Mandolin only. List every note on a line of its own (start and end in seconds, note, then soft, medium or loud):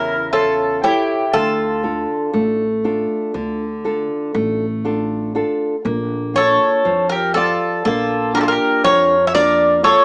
0.00 0.29 E4 medium
0.33 0.80 F4 medium
0.84 1.31 E4 medium
1.34 2.43 F4 medium
6.38 7.07 A4 medium
7.12 7.34 G4 medium
7.37 7.82 F4 medium
7.87 8.33 F4 medium
8.37 8.42 G4 medium
8.43 8.49 F4 medium
8.52 8.84 G4 medium
8.86 9.25 A#4 medium
9.27 9.34 C#5 medium
9.35 9.81 A#4 medium
9.84 10.05 A4 medium